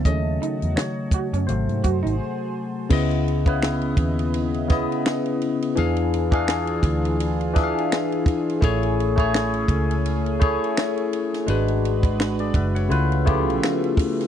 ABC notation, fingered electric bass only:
X:1
M:4/4
L:1/16
Q:"Swing 16ths" 1/4=84
K:C#m
V:1 name="Fingered electric bass" clef=bass
D,,2 z E,, z3 F,, G,,, G,, F,, G,,, z4 | C,,6 D,,4- D,, z4 z | E,,6 =D,,4- D,, z4 z | A,,,6 C,,4- C,, z4 z |
G,,,6 F,,,2 C,,4 z4 |]